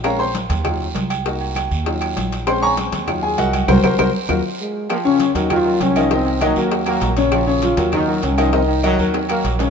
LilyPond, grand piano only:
\new Staff \with { instrumentName = "Grand piano" } { \time 4/4 \key bes \minor \tempo 4 = 198 << { <bes' des'' f'' bes''>8 <c'' c'''>8 r2. | r1 | <c'' c'''>8 <des'' aes'' bes'' des'''>8 r4. <aes' aes''>8 <ges' bes' ees'' ges''>4 | <ges' bes' c''>8 <ges' bes' c''>8 <ges' bes' c''>8 r8 <f' ges' bes'>8 r4. |
r8 <des des' des''>4 <ges ges' bes'>4 <ges ges' bes'>4 <ees ees' ees''>8 | <ees ees' ees''>4 <ees ees' ees''>8 <ges ges' bes'>4 <ges ges' bes'>4 <des des' des''>8~ | <des des' des''>8 <des des' des''>4 <ges ges' bes'>4 <ges ges' bes'>4 <ees ees' ees''>8 | <ees ees' ees''>4 <ees ees' ees''>8 <ges ges' bes'>4 <ges ges' bes'>4 <des des' des''>8 | } \\ { <aes c' des'>8 r4. <ges ees' f'>8 r4. | <bes ees' ges'>2 <ges ees' f'>2 | <aes c' des'>2 <ges ees' f'>4. r8 | r1 |
r1 | r1 | r1 | r1 | } >> }